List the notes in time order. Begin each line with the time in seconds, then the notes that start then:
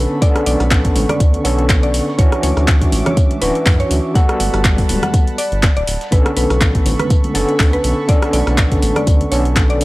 Already playing: D3 B3 C#4 A4 B4 B5 C#6
0.21 D3 B3 C#4 A4 D5, kick, closed hi-hat, tambourine
0.36 cross-stick, closed hi-hat
0.46 B1 D5, open hi-hat, tambourine, high conga
0.60 B1, cross-stick, closed hi-hat, high bongo
0.71 kick, snare, clap, closed hi-hat, tambourine
0.85 kick, closed hi-hat
0.96 A1, open hi-hat, tambourine, high bongo, high conga
1.09 D5, cross-stick, closed hi-hat, high conga, low conga
1.20 D2, kick, closed hi-hat, tambourine
1.34 closed hi-hat
1.44 B1 D3 B3 C#4 A4 C#5, open hi-hat, tambourine
1.59 closed hi-hat
1.69 kick, snare, clap, closed hi-hat, tambourine
1.83 D5, closed hi-hat
1.94 snare, open hi-hat, tambourine
2.08 snare
2.18 D2 E3 C#4 D4 F#4 C#5 E5 D6, kick, closed hi-hat, tambourine
2.32 cross-stick, closed hi-hat
2.43 D2 C#5, open hi-hat, tambourine, high conga
2.56 D2, cross-stick, closed hi-hat, high bongo
2.68 kick, snare, clap, closed hi-hat, tambourine
2.82 kick, closed hi-hat
2.92 A1, open hi-hat, tambourine, high bongo, high conga
3.06 C#5, cross-stick, closed hi-hat, high conga, low conga
3.17 kick, closed hi-hat, tambourine
3.31 closed hi-hat, high conga
3.41 D1 E3 C#4 D4 F#4 B4, snare, open hi-hat, tambourine
3.55 closed hi-hat
3.66 F#2, kick, snare, clap, open hi-hat, tambourine
3.80 C#5, closed hi-hat
3.91 D2, open hi-hat, tambourine
4.14 G3 B3 F#4 A4 F#5 A5 B5, kick, closed hi-hat, tambourine
4.29 cross-stick, closed hi-hat
4.40 G1 F#5, open hi-hat, tambourine, high conga
4.54 G1, cross-stick, closed hi-hat, high bongo
4.65 kick, snare, clap, closed hi-hat, tambourine
4.78 kick, open hi-hat
4.89 D1, open hi-hat, tambourine, high bongo, high conga
5.03 F#5, cross-stick, closed hi-hat, high conga, low conga
5.14 kick, closed hi-hat, tambourine
5.27 closed hi-hat
5.38 D5, open hi-hat, tambourine
5.52 G1, closed hi-hat
5.63 kick, snare, clap, closed hi-hat, tambourine
5.77 D1 D5, closed hi-hat
5.87 D1, snare, open hi-hat, tambourine
6.01 snare, closed hi-hat
6.11 B1 D3 B3 C#4 A4 B4 B5 C#6, kick, closed hi-hat, tambourine
6.26 cross-stick, closed hi-hat
6.36 B1 B4, open hi-hat, tambourine, high conga
6.50 B1, cross-stick, closed hi-hat, high bongo
6.61 kick, snare, clap, closed hi-hat, tambourine
6.75 kick, closed hi-hat
6.86 A1, open hi-hat, tambourine, high bongo, high conga
6.99 B4, cross-stick, closed hi-hat, high conga, low conga
7.10 kick, closed hi-hat, tambourine
7.24 closed hi-hat, high conga
7.34 F#1 D3 B3 C#4 A4, snare, open hi-hat, tambourine
7.49 closed hi-hat
7.59 D2, kick, snare, clap, open hi-hat, tambourine
7.73 B4, closed hi-hat
7.84 B1, open hi-hat, tambourine
8.08 D3 B3 C#4 A4 D5, kick, closed hi-hat, tambourine
8.22 cross-stick, closed hi-hat
8.33 B1 D5, open hi-hat, tambourine, high conga
8.47 B1, cross-stick, closed hi-hat, high bongo
8.58 kick, snare, clap, closed hi-hat, tambourine
8.72 kick, closed hi-hat
8.82 A1, open hi-hat, tambourine, high bongo, high conga
8.96 D5, cross-stick, closed hi-hat, high conga, low conga
9.07 D2, kick, closed hi-hat, tambourine
9.21 closed hi-hat
9.31 B1 D3 B3 C#4 A4 C#5, open hi-hat, tambourine
9.45 closed hi-hat
9.56 kick, snare, clap, closed hi-hat, tambourine
9.70 D5, closed hi-hat
9.81 snare, open hi-hat, tambourine